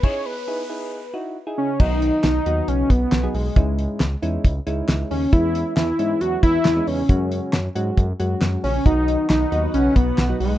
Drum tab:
CC |x-------|x-------|--------|--------|
HH |--------|-xxxxxxo|xxxxxxxo|xxxxxxxo|
CP |--------|--x---x-|--x---x-|--x---x-|
SD |--------|--o---o-|--o---o-|--o---o-|
BD |o-------|o----o--|o---o---|o----o--|

CC |--------|--------|
HH |xxxxxxxo|xxxxxxxo|
CP |--x---x-|--x---x-|
SD |--o---o-|--o---o-|
BD |o---o---|o----o--|